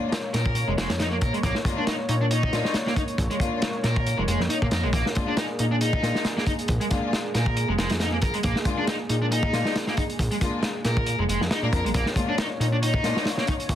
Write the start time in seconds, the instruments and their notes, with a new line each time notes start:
Already playing: string section G#3 A#3 D4 F4, analog synth pad A#3 C#5
0.12 snare, closed hi-hat
0.34 analog synth bass A#2, distorted electric guitar A#4, snare, closed hi-hat
0.46 kick
0.55 closed hi-hat
0.68 analog synth bass F1, distorted electric guitar G#3
0.78 analog synth bass F1, distorted electric guitar G#3, snare, closed hi-hat
0.90 analog synth bass F2, snare, closed hi-hat
0.99 distorted electric guitar D#4, snare, closed hi-hat
1.11 distorted electric guitar A#3
1.21 analog synth bass A#1, distorted electric guitar A#4, kick, closed hi-hat
1.33 distorted electric guitar G#3, closed hi-hat
1.43 analog synth bass A#1, distorted electric guitar A#3, kick, closed hi-hat
1.55 snare
1.65 string section G#3 A#3 D4 F4, kick, closed hi-hat
1.77 distorted electric guitar D4
1.87 distorted electric guitar D#4, snare, closed hi-hat
2.09 analog synth bass A#2, distorted electric guitar D#4, closed hi-hat
2.21 distorted electric guitar D4
2.31 distorted electric guitar D#4, closed hi-hat
2.43 kick
2.53 analog synth bass A#2, string section G#3 A#3 D4 F4, snare, closed hi-hat
2.65 snare
2.74 snare, closed hi-hat
2.87 distorted electric guitar A#3, snare
2.96 distorted electric guitar D#4, kick, closed hi-hat
3.08 closed hi-hat
3.18 analog synth bass A#1, kick, closed hi-hat
3.30 distorted electric guitar G#3, closed hi-hat
3.40 string section G#3 A#3 D4 F4, kick, closed hi-hat
3.62 snare, closed hi-hat
3.84 analog synth bass A#2, distorted electric guitar A#4, snare, closed hi-hat
3.96 kick
4.06 closed hi-hat
4.18 analog synth bass F1, distorted electric guitar G#3
4.28 analog synth bass F1, distorted electric guitar G#3, closed hi-hat
4.40 analog synth bass F2, snare
4.49 distorted electric guitar D#4, closed hi-hat
4.62 analog synth bass A#2, distorted electric guitar A#3, kick
4.71 analog synth bass F2, distorted electric guitar A#4, snare, closed hi-hat
4.84 analog synth bass A#1, distorted electric guitar G#3
4.93 analog synth bass A#1, distorted electric guitar A#3, analog synth pad G#4, kick, closed hi-hat
5.06 snare
5.15 string section G#3 A#3 D4 F4, kick, closed hi-hat
5.28 distorted electric guitar D4
5.37 distorted electric guitar D#4, snare, closed hi-hat
5.59 analog synth bass A#2, distorted electric guitar D#4, closed hi-hat
5.71 distorted electric guitar D4
5.81 distorted electric guitar D#4, closed hi-hat
5.93 kick
6.03 analog synth bass A#2, string section G#3 A#3 D4 F4, snare, closed hi-hat
6.15 snare
6.25 snare, closed hi-hat
6.37 distorted electric guitar A#3, snare
6.47 distorted electric guitar D#4, kick, closed hi-hat
6.59 closed hi-hat
6.68 analog synth bass A#1, kick, closed hi-hat
6.81 distorted electric guitar G#3, closed hi-hat
6.91 string section G#3 A#3 D4 F4, kick, closed hi-hat
7.13 snare, closed hi-hat
7.35 analog synth bass A#2, distorted electric guitar A#4, snare, closed hi-hat
7.46 kick
7.57 closed hi-hat
7.68 analog synth bass F1, distorted electric guitar G#3
7.78 analog synth bass F1, distorted electric guitar G#3, snare, closed hi-hat
7.90 analog synth bass F2, snare, closed hi-hat
8.00 distorted electric guitar D#4, snare, closed hi-hat
8.12 distorted electric guitar A#3
8.22 analog synth bass A#1, distorted electric guitar A#4, kick, closed hi-hat
8.34 distorted electric guitar G#3, closed hi-hat
8.43 analog synth bass A#1, distorted electric guitar A#3, kick, closed hi-hat
8.56 snare
8.65 string section G#3 A#3 D4 F4, kick, closed hi-hat
8.78 distorted electric guitar D4
8.87 distorted electric guitar D#4, snare, closed hi-hat
9.09 analog synth bass A#2, distorted electric guitar D#4, closed hi-hat
9.22 distorted electric guitar D4
9.31 distorted electric guitar D#4, closed hi-hat
9.43 kick
9.53 analog synth bass A#2, string section G#3 A#3 D4 F4, snare, closed hi-hat
9.65 snare
9.76 snare, closed hi-hat
9.87 distorted electric guitar A#3, snare
9.97 distorted electric guitar D#4, kick, closed hi-hat
10.10 closed hi-hat
10.19 analog synth bass A#1, kick, closed hi-hat
10.31 distorted electric guitar G#3, closed hi-hat
10.41 string section G#3 A#3 D4 F4, kick, closed hi-hat
10.63 snare, closed hi-hat
10.85 analog synth bass A#2, distorted electric guitar A#4, snare, closed hi-hat
10.97 kick
11.06 closed hi-hat
11.19 analog synth bass F1, distorted electric guitar G#3
11.29 analog synth bass F1, distorted electric guitar G#3, closed hi-hat
11.41 analog synth bass F2, snare
11.51 distorted electric guitar D#4, snare, closed hi-hat
11.62 analog synth bass A#2, string section G#3 A#3 D4 A#4, distorted electric guitar A#3
11.73 analog synth bass F2, distorted electric guitar A#4, kick, closed hi-hat
11.85 analog synth bass A#1, distorted electric guitar G#3, closed hi-hat
11.94 analog synth bass A#1, distorted electric guitar A#3, analog synth pad C#5, kick, closed hi-hat
12.06 snare
12.16 string section G#3 A#3 D4 F4, kick, closed hi-hat
12.29 distorted electric guitar D4
12.38 distorted electric guitar D#4, snare, closed hi-hat
12.60 analog synth bass A#2, distorted electric guitar D#4, closed hi-hat
12.72 distorted electric guitar D4
12.82 distorted electric guitar D#4, closed hi-hat
12.94 kick
13.04 analog synth bass A#2, string section G#3 A#3 D4 F4, snare, closed hi-hat
13.17 snare
13.25 snare, closed hi-hat
13.38 distorted electric guitar A#3, snare
13.47 distorted electric guitar D#4, kick, closed hi-hat
13.60 closed hi-hat
13.69 analog synth bass A#1, kick, closed hi-hat